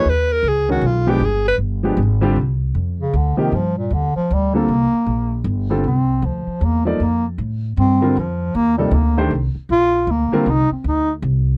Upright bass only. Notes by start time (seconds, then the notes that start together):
0.05 D#2
0.43 C#2
0.81 B1
1.20 G1
1.58 G1
1.97 G#1
2.36 C2
2.75 F2
3.13 D2
3.38 muted upright bass stroke
3.52 G2
3.90 D#2
4.16 muted upright bass stroke
4.31 D2
4.68 C2
4.92 muted upright bass stroke
5.06 A#1
5.44 G1
5.84 C2
6.22 D2
6.47 muted upright bass stroke
6.61 E2
7.00 F2
7.38 A2
7.77 G2
8.17 F2
8.55 D#2
8.91 D2
9.31 C2
9.55 muted upright bass stroke
9.69 A#1
10.07 D2
10.31 muted upright bass stroke
10.46 C2
10.71 muted upright bass stroke
10.84 D2
11.22 C2